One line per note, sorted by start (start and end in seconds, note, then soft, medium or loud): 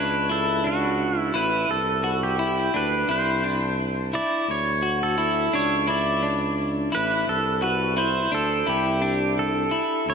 0.00 1.30 C#2 medium
0.00 0.29 D4 medium
0.00 0.31 B4 medium
0.29 0.64 E4 medium
0.29 0.66 A4 medium
0.64 1.34 D4 medium
0.64 1.20 F#4 medium
1.20 1.37 E4 medium
1.34 1.67 A1 medium
1.34 1.69 E4 medium
1.34 1.70 B4 medium
1.69 2.70 C2 medium
1.69 2.24 A4 medium
2.04 2.39 F#4 medium
2.23 2.71 G4 medium
2.39 2.74 E4 medium
2.74 3.07 D2 medium
2.74 3.09 D4 medium
2.74 3.08 B4 medium
3.09 4.17 C2 loud
3.09 3.44 E4 medium
3.09 3.76 C5 medium
3.44 4.13 D4 medium
4.13 4.48 E4 medium
4.13 4.50 D5 medium
4.48 5.49 D2 medium
4.48 4.98 C#5 medium
4.83 5.17 F#4 medium
5.03 5.56 A4 medium
5.18 5.53 E4 medium
5.53 6.88 C#2 medium
5.53 5.88 D4 medium
5.53 5.89 C#5 medium
5.88 6.23 E4 medium
5.88 6.55 D5 medium
6.23 6.92 D4 medium
6.92 7.26 A1 medium
6.92 7.27 E4 medium
6.92 7.29 B4 medium
7.27 8.28 C2 medium
7.27 7.63 A4 medium
7.62 7.96 F#4 medium
7.62 7.98 B4 medium
7.97 8.32 E4 medium
7.97 8.33 C5 medium
8.31 8.65 D2 medium
8.31 8.67 D4 medium
8.31 8.69 A4 medium
8.67 9.75 C2 medium
8.67 9.02 E4 medium
8.67 9.34 G4 medium
9.02 9.71 D4 medium
9.39 10.10 A4 medium
9.71 10.06 E4 medium
10.06 10.14 D2 medium
10.06 10.14 C#5 medium